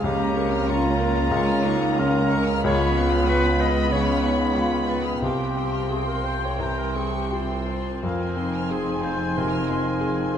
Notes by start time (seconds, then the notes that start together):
0.03 C#2 C#3 A#3 C#4 G4 F5 A#5
0.21 A#5
0.37 A#3 C4 C#6
0.53 F6
0.67 C#3 C#4 F4 F5 A#5 C#6
0.85 A#5
0.99 A#3 A#4 F5
1.17 A#5
1.31 C#2 C#4 C#6
1.50 F6
1.64 A#3 D#4 C#6
1.83 A#5
1.99 C#3 C#4 F4 A#4 F5 A#5
2.17 A#5
2.32 A#4 C#6
2.49 F6
2.63 C#2 C#3 B3 F4 C#5 F5 B5
2.83 B5
2.97 B3 C#6
3.14 F6
3.27 C#3 F4 B4 F5 B5 C#6
3.45 B5
3.60 B4 D#5 F5
3.75 B5
3.90 C#3 C#4 C#5 F5 B5 C#6
4.08 F6
4.22 B3 D#4 C#6
4.39 B5
4.54 D#3 F4 F5
4.71 B5
4.88 F4 B4 C#6
5.04 G#4 F6
5.22 C2 F3 C4 G4 F5 G5 C6
5.41 G5
5.57 C4 C6
5.74 F6
5.90 G4 G#4 C6
6.07 A#4
6.23 C5
6.45 C#5
6.59 C2 E3 C5 G5 A#5 C6
6.79 A#4
6.95 C4 G#4 C#6
7.15 G4
7.30 E3 F4 G4 G5 C6
7.69 C5
8.03 F1 F2 F3 F4 A#4 F5 G#5 C6
8.22 G#5
8.37 C4 D#4 C6
8.55 F6
8.70 G#4 C6
8.89 G#5
9.04 C5 F5
9.20 G#5
9.37 C3 A#4 C6
9.53 F6
9.70 C4 C6
9.86 G#5
10.00 G#4 F5
10.18 G#5
10.35 C5 C6